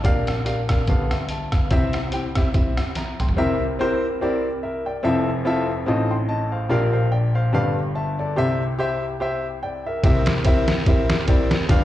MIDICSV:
0, 0, Header, 1, 3, 480
1, 0, Start_track
1, 0, Tempo, 416089
1, 55, Time_signature, 4, 2, 24, 8
1, 13659, End_track
2, 0, Start_track
2, 0, Title_t, "Grand piano"
2, 0, Program_c, 0, 0
2, 0, Note_on_c, 0, 75, 49
2, 0, Note_on_c, 0, 81, 59
2, 44, Note_on_c, 0, 62, 109
2, 51, Note_on_c, 0, 34, 65
2, 52, Note_on_c, 0, 67, 91
2, 56, Note_on_c, 0, 46, 66
2, 57, Note_on_c, 0, 70, 91
2, 63, Note_on_c, 0, 77, 105
2, 297, Note_off_c, 0, 81, 0
2, 303, Note_off_c, 0, 75, 0
2, 336, Note_off_c, 0, 62, 0
2, 340, Note_off_c, 0, 67, 0
2, 343, Note_off_c, 0, 70, 0
2, 346, Note_off_c, 0, 77, 0
2, 516, Note_on_c, 0, 62, 77
2, 524, Note_on_c, 0, 67, 75
2, 531, Note_on_c, 0, 70, 74
2, 539, Note_on_c, 0, 77, 87
2, 672, Note_off_c, 0, 62, 0
2, 676, Note_off_c, 0, 67, 0
2, 679, Note_off_c, 0, 70, 0
2, 683, Note_off_c, 0, 77, 0
2, 795, Note_on_c, 0, 62, 74
2, 800, Note_on_c, 0, 67, 61
2, 808, Note_on_c, 0, 70, 68
2, 817, Note_on_c, 0, 77, 76
2, 914, Note_off_c, 0, 62, 0
2, 916, Note_off_c, 0, 67, 0
2, 920, Note_off_c, 0, 70, 0
2, 925, Note_off_c, 0, 77, 0
2, 968, Note_off_c, 0, 34, 0
2, 970, Note_off_c, 0, 46, 0
2, 1012, Note_on_c, 0, 59, 81
2, 1021, Note_on_c, 0, 31, 63
2, 1021, Note_on_c, 0, 67, 64
2, 1022, Note_on_c, 0, 43, 62
2, 1027, Note_on_c, 0, 69, 68
2, 1033, Note_on_c, 0, 77, 88
2, 1295, Note_off_c, 0, 77, 0
2, 1296, Note_on_c, 0, 76, 53
2, 1300, Note_off_c, 0, 59, 0
2, 1305, Note_off_c, 0, 67, 0
2, 1306, Note_on_c, 0, 71, 46
2, 1308, Note_off_c, 0, 69, 0
2, 1491, Note_off_c, 0, 76, 0
2, 1496, Note_off_c, 0, 71, 0
2, 1502, Note_on_c, 0, 81, 67
2, 1508, Note_on_c, 0, 76, 53
2, 1756, Note_off_c, 0, 81, 0
2, 1759, Note_off_c, 0, 76, 0
2, 1771, Note_on_c, 0, 77, 61
2, 1776, Note_on_c, 0, 71, 53
2, 1934, Note_off_c, 0, 31, 0
2, 1934, Note_off_c, 0, 43, 0
2, 1968, Note_on_c, 0, 60, 106
2, 1974, Note_on_c, 0, 36, 72
2, 1975, Note_on_c, 0, 64, 96
2, 1978, Note_on_c, 0, 48, 71
2, 1982, Note_on_c, 0, 67, 91
2, 1991, Note_on_c, 0, 76, 114
2, 2225, Note_off_c, 0, 77, 0
2, 2228, Note_off_c, 0, 71, 0
2, 2259, Note_off_c, 0, 60, 0
2, 2262, Note_off_c, 0, 64, 0
2, 2266, Note_off_c, 0, 67, 0
2, 2271, Note_off_c, 0, 76, 0
2, 2445, Note_on_c, 0, 60, 74
2, 2449, Note_on_c, 0, 64, 72
2, 2455, Note_on_c, 0, 67, 69
2, 2464, Note_on_c, 0, 79, 89
2, 2597, Note_off_c, 0, 60, 0
2, 2599, Note_off_c, 0, 64, 0
2, 2602, Note_off_c, 0, 67, 0
2, 2607, Note_off_c, 0, 79, 0
2, 2722, Note_on_c, 0, 60, 69
2, 2726, Note_on_c, 0, 64, 59
2, 2736, Note_on_c, 0, 67, 66
2, 2738, Note_on_c, 0, 76, 82
2, 2838, Note_off_c, 0, 60, 0
2, 2840, Note_off_c, 0, 64, 0
2, 2845, Note_off_c, 0, 67, 0
2, 2846, Note_off_c, 0, 76, 0
2, 2927, Note_on_c, 0, 60, 69
2, 2935, Note_on_c, 0, 64, 59
2, 2943, Note_on_c, 0, 67, 64
2, 2948, Note_on_c, 0, 76, 78
2, 3219, Note_off_c, 0, 60, 0
2, 3223, Note_off_c, 0, 64, 0
2, 3227, Note_off_c, 0, 67, 0
2, 3229, Note_off_c, 0, 76, 0
2, 3421, Note_on_c, 0, 82, 54
2, 3426, Note_on_c, 0, 76, 49
2, 3675, Note_off_c, 0, 82, 0
2, 3678, Note_off_c, 0, 76, 0
2, 3688, Note_on_c, 0, 84, 58
2, 3695, Note_on_c, 0, 79, 48
2, 3850, Note_off_c, 0, 36, 0
2, 3852, Note_off_c, 0, 48, 0
2, 3883, Note_on_c, 0, 60, 90
2, 3889, Note_on_c, 0, 64, 79
2, 3895, Note_on_c, 0, 67, 84
2, 3897, Note_on_c, 0, 48, 80
2, 3898, Note_on_c, 0, 36, 77
2, 3899, Note_on_c, 0, 70, 85
2, 3902, Note_on_c, 0, 76, 113
2, 4143, Note_off_c, 0, 84, 0
2, 4147, Note_off_c, 0, 79, 0
2, 4176, Note_off_c, 0, 60, 0
2, 4179, Note_off_c, 0, 64, 0
2, 4182, Note_off_c, 0, 67, 0
2, 4184, Note_off_c, 0, 70, 0
2, 4186, Note_off_c, 0, 76, 0
2, 4373, Note_on_c, 0, 60, 98
2, 4381, Note_on_c, 0, 64, 83
2, 4387, Note_on_c, 0, 67, 80
2, 4392, Note_on_c, 0, 70, 91
2, 4392, Note_on_c, 0, 72, 112
2, 4661, Note_off_c, 0, 60, 0
2, 4665, Note_off_c, 0, 64, 0
2, 4668, Note_off_c, 0, 67, 0
2, 4670, Note_off_c, 0, 70, 0
2, 4670, Note_off_c, 0, 72, 0
2, 4860, Note_on_c, 0, 60, 86
2, 4863, Note_on_c, 0, 64, 77
2, 4868, Note_on_c, 0, 67, 80
2, 4873, Note_on_c, 0, 70, 82
2, 4874, Note_on_c, 0, 74, 94
2, 5144, Note_off_c, 0, 60, 0
2, 5146, Note_off_c, 0, 64, 0
2, 5148, Note_off_c, 0, 67, 0
2, 5150, Note_off_c, 0, 70, 0
2, 5151, Note_off_c, 0, 74, 0
2, 5341, Note_on_c, 0, 76, 72
2, 5349, Note_on_c, 0, 70, 65
2, 5594, Note_off_c, 0, 76, 0
2, 5598, Note_off_c, 0, 70, 0
2, 5607, Note_on_c, 0, 79, 79
2, 5611, Note_on_c, 0, 74, 62
2, 5768, Note_off_c, 0, 36, 0
2, 5768, Note_off_c, 0, 48, 0
2, 5801, Note_on_c, 0, 60, 92
2, 5806, Note_on_c, 0, 64, 90
2, 5811, Note_on_c, 0, 65, 84
2, 5813, Note_on_c, 0, 29, 90
2, 5814, Note_on_c, 0, 41, 77
2, 5815, Note_on_c, 0, 69, 90
2, 5822, Note_on_c, 0, 76, 106
2, 6061, Note_off_c, 0, 79, 0
2, 6063, Note_off_c, 0, 74, 0
2, 6093, Note_off_c, 0, 60, 0
2, 6096, Note_off_c, 0, 64, 0
2, 6099, Note_off_c, 0, 65, 0
2, 6101, Note_off_c, 0, 69, 0
2, 6104, Note_off_c, 0, 76, 0
2, 6284, Note_on_c, 0, 60, 94
2, 6289, Note_on_c, 0, 64, 85
2, 6293, Note_on_c, 0, 65, 89
2, 6298, Note_on_c, 0, 69, 93
2, 6308, Note_on_c, 0, 76, 108
2, 6574, Note_off_c, 0, 60, 0
2, 6577, Note_off_c, 0, 64, 0
2, 6579, Note_off_c, 0, 65, 0
2, 6582, Note_off_c, 0, 69, 0
2, 6587, Note_off_c, 0, 76, 0
2, 6725, Note_off_c, 0, 29, 0
2, 6726, Note_off_c, 0, 41, 0
2, 6762, Note_on_c, 0, 60, 87
2, 6768, Note_on_c, 0, 63, 86
2, 6774, Note_on_c, 0, 45, 78
2, 6777, Note_on_c, 0, 33, 84
2, 6777, Note_on_c, 0, 65, 85
2, 6781, Note_on_c, 0, 69, 82
2, 6784, Note_on_c, 0, 75, 94
2, 7045, Note_on_c, 0, 79, 58
2, 7045, Note_on_c, 0, 84, 67
2, 7047, Note_off_c, 0, 75, 0
2, 7053, Note_off_c, 0, 60, 0
2, 7056, Note_off_c, 0, 63, 0
2, 7060, Note_off_c, 0, 65, 0
2, 7063, Note_off_c, 0, 69, 0
2, 7243, Note_off_c, 0, 79, 0
2, 7243, Note_off_c, 0, 84, 0
2, 7252, Note_on_c, 0, 81, 80
2, 7256, Note_on_c, 0, 75, 67
2, 7508, Note_off_c, 0, 81, 0
2, 7510, Note_off_c, 0, 75, 0
2, 7522, Note_on_c, 0, 77, 68
2, 7530, Note_on_c, 0, 72, 59
2, 7686, Note_off_c, 0, 45, 0
2, 7688, Note_off_c, 0, 33, 0
2, 7719, Note_off_c, 0, 77, 0
2, 7722, Note_on_c, 0, 62, 92
2, 7724, Note_on_c, 0, 65, 93
2, 7729, Note_on_c, 0, 46, 83
2, 7731, Note_on_c, 0, 70, 87
2, 7732, Note_on_c, 0, 34, 83
2, 7732, Note_on_c, 0, 67, 93
2, 7736, Note_on_c, 0, 77, 96
2, 7975, Note_off_c, 0, 77, 0
2, 7981, Note_off_c, 0, 72, 0
2, 7992, Note_on_c, 0, 77, 67
2, 7998, Note_on_c, 0, 72, 60
2, 8013, Note_off_c, 0, 62, 0
2, 8014, Note_off_c, 0, 65, 0
2, 8017, Note_off_c, 0, 70, 0
2, 8018, Note_off_c, 0, 67, 0
2, 8196, Note_off_c, 0, 77, 0
2, 8199, Note_off_c, 0, 72, 0
2, 8209, Note_on_c, 0, 79, 81
2, 8212, Note_on_c, 0, 74, 64
2, 8466, Note_off_c, 0, 79, 0
2, 8468, Note_off_c, 0, 74, 0
2, 8479, Note_on_c, 0, 77, 73
2, 8485, Note_on_c, 0, 72, 66
2, 8644, Note_off_c, 0, 46, 0
2, 8645, Note_off_c, 0, 34, 0
2, 8684, Note_on_c, 0, 62, 88
2, 8685, Note_off_c, 0, 77, 0
2, 8691, Note_on_c, 0, 67, 85
2, 8692, Note_on_c, 0, 43, 78
2, 8695, Note_on_c, 0, 31, 76
2, 8695, Note_on_c, 0, 69, 73
2, 8696, Note_on_c, 0, 71, 83
2, 8702, Note_on_c, 0, 77, 98
2, 8939, Note_off_c, 0, 72, 0
2, 8974, Note_off_c, 0, 62, 0
2, 8977, Note_off_c, 0, 67, 0
2, 8980, Note_off_c, 0, 69, 0
2, 8980, Note_off_c, 0, 71, 0
2, 8983, Note_off_c, 0, 77, 0
2, 9175, Note_on_c, 0, 81, 77
2, 9177, Note_on_c, 0, 76, 61
2, 9429, Note_off_c, 0, 81, 0
2, 9430, Note_off_c, 0, 76, 0
2, 9449, Note_on_c, 0, 74, 81
2, 9462, Note_on_c, 0, 69, 67
2, 9606, Note_off_c, 0, 43, 0
2, 9607, Note_off_c, 0, 31, 0
2, 9647, Note_on_c, 0, 67, 93
2, 9656, Note_on_c, 0, 72, 90
2, 9658, Note_on_c, 0, 36, 78
2, 9662, Note_on_c, 0, 48, 79
2, 9669, Note_on_c, 0, 76, 114
2, 9901, Note_off_c, 0, 74, 0
2, 9908, Note_off_c, 0, 69, 0
2, 9936, Note_off_c, 0, 67, 0
2, 9940, Note_off_c, 0, 72, 0
2, 9947, Note_off_c, 0, 76, 0
2, 10135, Note_on_c, 0, 67, 103
2, 10145, Note_on_c, 0, 72, 88
2, 10153, Note_on_c, 0, 76, 104
2, 10420, Note_off_c, 0, 67, 0
2, 10425, Note_off_c, 0, 72, 0
2, 10429, Note_off_c, 0, 76, 0
2, 10615, Note_on_c, 0, 67, 88
2, 10624, Note_on_c, 0, 72, 76
2, 10634, Note_on_c, 0, 76, 95
2, 10900, Note_off_c, 0, 67, 0
2, 10905, Note_off_c, 0, 72, 0
2, 10909, Note_off_c, 0, 76, 0
2, 11105, Note_on_c, 0, 79, 75
2, 11113, Note_on_c, 0, 74, 62
2, 11355, Note_off_c, 0, 79, 0
2, 11359, Note_off_c, 0, 74, 0
2, 11380, Note_on_c, 0, 76, 73
2, 11383, Note_on_c, 0, 70, 59
2, 11529, Note_off_c, 0, 36, 0
2, 11531, Note_off_c, 0, 48, 0
2, 11573, Note_off_c, 0, 70, 0
2, 11575, Note_on_c, 0, 60, 92
2, 11581, Note_on_c, 0, 64, 84
2, 11583, Note_off_c, 0, 76, 0
2, 11583, Note_on_c, 0, 48, 76
2, 11584, Note_on_c, 0, 67, 86
2, 11588, Note_on_c, 0, 36, 75
2, 11590, Note_on_c, 0, 70, 83
2, 11600, Note_on_c, 0, 76, 100
2, 11860, Note_off_c, 0, 60, 0
2, 11863, Note_off_c, 0, 64, 0
2, 11864, Note_off_c, 0, 67, 0
2, 11868, Note_off_c, 0, 70, 0
2, 11873, Note_off_c, 0, 76, 0
2, 12051, Note_on_c, 0, 60, 96
2, 12057, Note_on_c, 0, 64, 85
2, 12063, Note_on_c, 0, 67, 83
2, 12068, Note_on_c, 0, 70, 83
2, 12072, Note_on_c, 0, 76, 109
2, 12338, Note_off_c, 0, 60, 0
2, 12341, Note_off_c, 0, 64, 0
2, 12344, Note_off_c, 0, 67, 0
2, 12347, Note_off_c, 0, 70, 0
2, 12349, Note_off_c, 0, 76, 0
2, 12533, Note_on_c, 0, 60, 84
2, 12541, Note_on_c, 0, 64, 79
2, 12544, Note_on_c, 0, 67, 83
2, 12549, Note_on_c, 0, 70, 77
2, 12552, Note_on_c, 0, 76, 93
2, 12819, Note_off_c, 0, 60, 0
2, 12823, Note_off_c, 0, 64, 0
2, 12825, Note_off_c, 0, 67, 0
2, 12827, Note_off_c, 0, 70, 0
2, 12829, Note_off_c, 0, 76, 0
2, 13009, Note_on_c, 0, 60, 97
2, 13011, Note_on_c, 0, 64, 88
2, 13017, Note_on_c, 0, 67, 82
2, 13021, Note_on_c, 0, 70, 79
2, 13025, Note_on_c, 0, 74, 96
2, 13297, Note_off_c, 0, 60, 0
2, 13298, Note_off_c, 0, 64, 0
2, 13301, Note_off_c, 0, 67, 0
2, 13303, Note_off_c, 0, 70, 0
2, 13305, Note_off_c, 0, 74, 0
2, 13452, Note_off_c, 0, 48, 0
2, 13454, Note_off_c, 0, 36, 0
2, 13483, Note_on_c, 0, 62, 98
2, 13483, Note_on_c, 0, 65, 80
2, 13491, Note_on_c, 0, 43, 88
2, 13492, Note_on_c, 0, 31, 84
2, 13492, Note_on_c, 0, 67, 86
2, 13499, Note_on_c, 0, 71, 94
2, 13502, Note_on_c, 0, 77, 109
2, 13659, Note_off_c, 0, 31, 0
2, 13659, Note_off_c, 0, 43, 0
2, 13659, Note_off_c, 0, 62, 0
2, 13659, Note_off_c, 0, 65, 0
2, 13659, Note_off_c, 0, 67, 0
2, 13659, Note_off_c, 0, 71, 0
2, 13659, Note_off_c, 0, 77, 0
2, 13659, End_track
3, 0, Start_track
3, 0, Title_t, "Drums"
3, 53, Note_on_c, 9, 36, 105
3, 53, Note_on_c, 9, 42, 81
3, 168, Note_off_c, 9, 36, 0
3, 168, Note_off_c, 9, 42, 0
3, 314, Note_on_c, 9, 42, 68
3, 326, Note_on_c, 9, 37, 93
3, 430, Note_off_c, 9, 42, 0
3, 441, Note_off_c, 9, 37, 0
3, 530, Note_on_c, 9, 42, 93
3, 646, Note_off_c, 9, 42, 0
3, 795, Note_on_c, 9, 42, 74
3, 796, Note_on_c, 9, 37, 107
3, 810, Note_on_c, 9, 36, 75
3, 911, Note_off_c, 9, 42, 0
3, 912, Note_off_c, 9, 37, 0
3, 925, Note_off_c, 9, 36, 0
3, 1008, Note_on_c, 9, 42, 76
3, 1012, Note_on_c, 9, 36, 100
3, 1124, Note_off_c, 9, 42, 0
3, 1128, Note_off_c, 9, 36, 0
3, 1280, Note_on_c, 9, 37, 83
3, 1280, Note_on_c, 9, 42, 61
3, 1395, Note_off_c, 9, 37, 0
3, 1396, Note_off_c, 9, 42, 0
3, 1484, Note_on_c, 9, 42, 85
3, 1599, Note_off_c, 9, 42, 0
3, 1755, Note_on_c, 9, 37, 87
3, 1758, Note_on_c, 9, 42, 63
3, 1764, Note_on_c, 9, 36, 86
3, 1870, Note_off_c, 9, 37, 0
3, 1873, Note_off_c, 9, 42, 0
3, 1879, Note_off_c, 9, 36, 0
3, 1967, Note_on_c, 9, 42, 89
3, 1973, Note_on_c, 9, 36, 104
3, 2083, Note_off_c, 9, 42, 0
3, 2088, Note_off_c, 9, 36, 0
3, 2228, Note_on_c, 9, 42, 66
3, 2239, Note_on_c, 9, 37, 88
3, 2343, Note_off_c, 9, 42, 0
3, 2355, Note_off_c, 9, 37, 0
3, 2445, Note_on_c, 9, 42, 89
3, 2560, Note_off_c, 9, 42, 0
3, 2715, Note_on_c, 9, 42, 69
3, 2716, Note_on_c, 9, 37, 97
3, 2731, Note_on_c, 9, 36, 76
3, 2831, Note_off_c, 9, 42, 0
3, 2832, Note_off_c, 9, 37, 0
3, 2846, Note_off_c, 9, 36, 0
3, 2933, Note_on_c, 9, 42, 81
3, 2935, Note_on_c, 9, 36, 111
3, 3049, Note_off_c, 9, 42, 0
3, 3050, Note_off_c, 9, 36, 0
3, 3201, Note_on_c, 9, 37, 94
3, 3201, Note_on_c, 9, 42, 63
3, 3316, Note_off_c, 9, 37, 0
3, 3316, Note_off_c, 9, 42, 0
3, 3408, Note_on_c, 9, 42, 82
3, 3413, Note_on_c, 9, 38, 45
3, 3523, Note_off_c, 9, 42, 0
3, 3529, Note_off_c, 9, 38, 0
3, 3688, Note_on_c, 9, 42, 61
3, 3689, Note_on_c, 9, 45, 72
3, 3790, Note_on_c, 9, 43, 71
3, 3804, Note_off_c, 9, 42, 0
3, 3804, Note_off_c, 9, 45, 0
3, 3906, Note_off_c, 9, 43, 0
3, 11577, Note_on_c, 9, 36, 117
3, 11577, Note_on_c, 9, 51, 82
3, 11692, Note_off_c, 9, 36, 0
3, 11693, Note_off_c, 9, 51, 0
3, 11835, Note_on_c, 9, 51, 63
3, 11847, Note_on_c, 9, 38, 113
3, 11951, Note_off_c, 9, 51, 0
3, 11962, Note_off_c, 9, 38, 0
3, 12050, Note_on_c, 9, 51, 90
3, 12061, Note_on_c, 9, 36, 96
3, 12165, Note_off_c, 9, 51, 0
3, 12176, Note_off_c, 9, 36, 0
3, 12318, Note_on_c, 9, 51, 75
3, 12319, Note_on_c, 9, 38, 126
3, 12433, Note_off_c, 9, 51, 0
3, 12434, Note_off_c, 9, 38, 0
3, 12533, Note_on_c, 9, 36, 122
3, 12533, Note_on_c, 9, 51, 73
3, 12648, Note_off_c, 9, 36, 0
3, 12648, Note_off_c, 9, 51, 0
3, 12801, Note_on_c, 9, 38, 114
3, 12801, Note_on_c, 9, 51, 64
3, 12916, Note_off_c, 9, 38, 0
3, 12916, Note_off_c, 9, 51, 0
3, 13009, Note_on_c, 9, 51, 77
3, 13016, Note_on_c, 9, 36, 87
3, 13124, Note_off_c, 9, 51, 0
3, 13131, Note_off_c, 9, 36, 0
3, 13277, Note_on_c, 9, 38, 109
3, 13280, Note_on_c, 9, 51, 64
3, 13393, Note_off_c, 9, 38, 0
3, 13396, Note_off_c, 9, 51, 0
3, 13488, Note_on_c, 9, 51, 93
3, 13491, Note_on_c, 9, 36, 109
3, 13604, Note_off_c, 9, 51, 0
3, 13606, Note_off_c, 9, 36, 0
3, 13659, End_track
0, 0, End_of_file